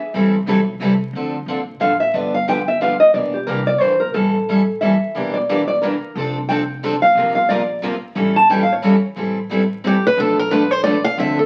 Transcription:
Already playing: nylon-string guitar E5
0.14 upright bass A1, steel-string acoustic guitar E3 G3 C4 E4 A4
0.46 upright bass B1, steel-string acoustic guitar E3 G3 C4 E4 A4
0.80 upright bass C2, steel-string acoustic guitar E3 G3 C4 E4 A4
1.13 upright bass D2, steel-string acoustic guitar D3 F3 C4 D4 A4
1.46 upright bass A#1, steel-string acoustic guitar D3 F3 C4 D4 A4
1.80 upright bass A1, steel-string acoustic guitar D3 F3 C4 D4 A4, nylon-string guitar F5
2.00 nylon-string guitar E5
2.14 upright bass G1, steel-string acoustic guitar D3 F3 B3 D4 G4, nylon-string guitar D5
2.34 nylon-string guitar F5
2.48 steel-string acoustic guitar D3 F3 B3 D4 G4, nylon-string guitar G5
2.68 nylon-string guitar E5
2.81 steel-string acoustic guitar D3 F3 B3 D4 G4, nylon-string guitar F5
3.00 nylon-string guitar D#5
3.14 upright bass E1, steel-string acoustic guitar E3 A#3 D4 G4, nylon-string guitar D5
3.34 nylon-string guitar G4
3.47 upright bass C2, steel-string acoustic guitar E3 A#3 D4 G4, nylon-string guitar A#4
3.67 nylon-string guitar D5
3.80 upright bass A#1, steel-string acoustic guitar E3 A#3 D4 G4, nylon-string guitar C5
4.00 nylon-string guitar A#4
4.14 upright bass A1, steel-string acoustic guitar E3 G3 C#4 E4 A4, nylon-string guitar A4
4.49 steel-string acoustic guitar E3 G3 C#4 E4 A4
4.81 steel-string acoustic guitar E3 G3 C#4 E4 A4, nylon-string guitar E5
5.15 upright bass E1, steel-string acoustic guitar E3 G3 A#3 D4 E4 G4 A#4
5.34 nylon-string guitar D5
5.49 steel-string acoustic guitar E3 G3 A#3 D4 E4 G4 A#4
5.68 nylon-string guitar D5
5.82 steel-string acoustic guitar E3 G3 A#3 D4 E4 G4 A#4, nylon-string guitar A#4
6.15 upright bass F1, steel-string acoustic guitar F3 C4 D4 A4
6.49 steel-string acoustic guitar F3 C4 D4 A4, nylon-string guitar G5
6.84 steel-string acoustic guitar F3 C4 D4 A4
7.02 nylon-string guitar F5
7.15 upright bass A#1, steel-string acoustic guitar C3 F3 A#3 F4 A#4
7.35 nylon-string guitar F5
7.49 steel-string acoustic guitar C3 F3 A#3 F4 A#4, nylon-string guitar D5
7.82 steel-string acoustic guitar C3 F3 A#3 F4 A#4
8.15 upright bass A1, steel-string acoustic guitar E3 G3 C#4 E4 A4
8.36 nylon-string guitar A5
8.50 steel-string acoustic guitar E3 G3 C#4 E4 A4, nylon-string guitar G5
8.63 nylon-string guitar F5
8.72 nylon-string guitar C#5
8.82 steel-string acoustic guitar E3 G3 C#4 E4 A4
9.16 upright bass A1, steel-string acoustic guitar E3 G3 C4 E4 A4
9.51 steel-string acoustic guitar E3 G3 C4 E4 A4
9.84 steel-string acoustic guitar E3 G3 C4 E4 G4 A4
10.07 steel-string acoustic guitar B4
10.17 upright bass B1, steel-string acoustic guitar B2 F3 A3 D4 A4 B4
10.39 steel-string acoustic guitar A#4
10.51 steel-string acoustic guitar B2 F3 A3 D4 A4 B4
10.71 steel-string acoustic guitar C5
10.84 steel-string acoustic guitar B2 F3 A3 D4 A4 B4 D5
11.04 steel-string acoustic guitar F5
11.18 upright bass D2, steel-string acoustic guitar D3 F3 C4 D4 A4 E5
11.39 steel-string acoustic guitar A4

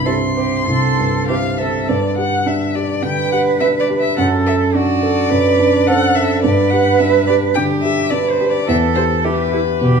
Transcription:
Already playing: grand piano C2 G2
0.05 grand piano C4 E4 G4, cello A4, violin C6
0.36 grand piano C4, cello G4
0.67 grand piano C2, cello A4
0.99 grand piano G2
1.27 grand piano C4 E4 G4, cello G4, violin F5
1.58 grand piano C4, cello A4, violin E5
1.88 grand piano G2, violin D5
2.17 grand piano G4, violin F#5
2.46 grand piano D4, violin E5
2.75 grand piano G4, violin D5
3.02 grand piano D3, cello B4, violin G5
3.32 grand piano G4, violin F#5
3.60 grand piano D4, violin E5
3.80 violin D5
3.90 grand piano G4
3.99 violin E5
4.18 grand piano F#2, cello A4, violin F#5
4.46 grand piano A4, violin E5
4.75 grand piano D4, cello F#4, violin D5
5.03 grand piano A4
5.30 grand piano F#2, cello B4
5.59 grand piano D4
5.87 grand piano C4, cello A4, violin F#5
6.15 grand piano A4, violin E5
6.42 grand piano G2, cello B4, violin D5
6.70 grand piano G4, violin F#5
6.99 grand piano D4, violin E5
7.27 grand piano G4, violin D5
7.54 grand piano D3, cello G4, violin G5
7.83 grand piano G4, violin E5
8.10 grand piano D4, cello B4, violin D5
8.30 violin C5
8.41 grand piano G4
8.50 violin D5
8.68 grand piano E2, cello A4, violin E5
8.95 grand piano G4, violin C5
9.25 grand piano E4, cello G4, violin B4
9.53 cello E4, grand piano G4
9.81 grand piano B2, cello G4

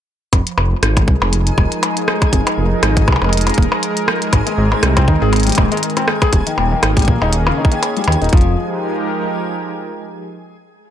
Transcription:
0.33 detuned saw bass F1, analog synth pad F3, synth texture G#3 G#5, kick, closed hi-hat, percussion blips
0.47 closed hi-hat
0.58 detuned saw bass F1, percussion blips
0.63 analog synth pad G#3
0.82 detuned saw bass G#1, analog synth pad G#4, cross-stick, closed hi-hat
0.97 kick, closed hi-hat, percussion blips
1.03 analog synth pad A#4
1.08 detuned saw bass C2, kick
1.17 analog synth pad D#4
1.22 detuned saw bass F1, percussion blips
1.33 closed hi-hat
1.47 closed hi-hat
1.58 detuned saw bass D#1, kick, percussion blips
1.72 closed hi-hat
1.83 closed hi-hat, percussion blips
1.97 closed hi-hat
2.08 cross-stick
2.22 kick, closed hi-hat, percussion blips
2.33 detuned saw bass F1, kick, closed hi-hat
2.47 closed hi-hat, percussion blips
2.58 detuned saw bass F1
2.83 detuned saw bass G#1, cross-stick, closed hi-hat, percussion blips
2.97 kick, closed hi-hat
3.08 detuned saw bass C2, kick, percussion blips
3.12 percussion blips
3.16 percussion blips
3.22 detuned saw bass F1, percussion blips
3.24 percussion blips
3.29 closed hi-hat, percussion blips
3.37 closed hi-hat
3.41 closed hi-hat
3.47 closed hi-hat, percussion blips
3.49 closed hi-hat
3.54 detuned saw bass D#1, kick, closed hi-hat
3.63 closed hi-hat
3.72 percussion blips
3.83 closed hi-hat
3.97 closed hi-hat
4.08 cross-stick, percussion blips
4.22 closed hi-hat
4.33 detuned saw bass G#1, analog synth pad D#3, kick, closed hi-hat, percussion blips
4.43 analog synth pad C4
4.47 felt piano G#3, closed hi-hat
4.58 detuned saw bass G#1, felt piano G#2
4.72 felt piano G#3, percussion blips
4.83 detuned saw bass C2, cross-stick, closed hi-hat
4.97 felt piano C4, kick, closed hi-hat, percussion blips
5.08 detuned saw bass D#2, felt piano D#4, kick
5.22 detuned saw bass G#1, felt piano G#4
5.33 closed hi-hat, percussion blips
5.36 closed hi-hat
5.40 closed hi-hat
5.43 closed hi-hat
5.47 felt piano G3, closed hi-hat
5.49 closed hi-hat
5.52 closed hi-hat
5.55 detuned saw bass D#1, felt piano G#2, kick, closed hi-hat, percussion blips
5.72 felt piano G#3, closed hi-hat
5.77 closed hi-hat
5.83 closed hi-hat
5.90 closed hi-hat
5.97 felt piano C4, closed hi-hat, percussion blips
6.08 felt piano G#3, cross-stick
6.22 felt piano G#4, kick, closed hi-hat, percussion blips
6.33 detuned saw bass D#1, kick, closed hi-hat
6.46 felt piano D#3, analog synth pad A#3, closed hi-hat
6.58 detuned saw bass D#1, felt piano D#2, percussion blips
6.72 felt piano D#3
6.77 analog synth pad G#4
6.83 detuned saw bass G#1, cross-stick, closed hi-hat, percussion blips
6.97 felt piano G3, kick, closed hi-hat
6.99 closed hi-hat
7.02 closed hi-hat
7.05 detuned saw bass A#1, felt piano A#3, kick, closed hi-hat
7.10 analog synth pad C#4
7.22 detuned saw bass D#1, felt piano D#4, percussion blips
7.33 closed hi-hat
7.47 felt piano C#3, percussion blips
7.58 felt piano D#4
7.65 kick
7.72 felt piano D#3, closed hi-hat
7.83 closed hi-hat, percussion blips
7.97 felt piano G3, closed hi-hat
8.04 detuned saw bass D#2, felt piano D#3, closed hi-hat, percussion blips
8.12 closed hi-hat
8.22 detuned saw bass D#1, felt piano D#4, closed hi-hat
8.24 closed hi-hat
8.29 detuned saw bass F1, kick, closed hi-hat
8.33 felt piano F3, analog synth pad F3, closed hi-hat
8.37 closed hi-hat
8.41 analog synth pad G#3, closed hi-hat
8.49 analog synth pad D#4
8.56 analog synth pad G4
8.63 analog synth pad A#4

